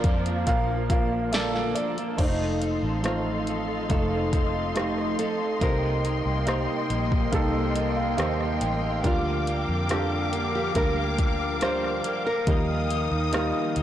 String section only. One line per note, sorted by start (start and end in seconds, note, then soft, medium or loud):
0.00 2.15 F3 medium
0.00 2.15 A#3 medium
2.18 5.58 A4 medium
2.18 9.00 D#5 medium
2.18 5.58 F5 medium
2.18 9.00 C6 medium
5.61 9.01 A#3 medium
5.61 13.83 G5 medium
9.04 13.83 A#4 medium
9.04 13.83 F5 medium
9.04 12.44 D6 medium
12.48 13.83 D#6 medium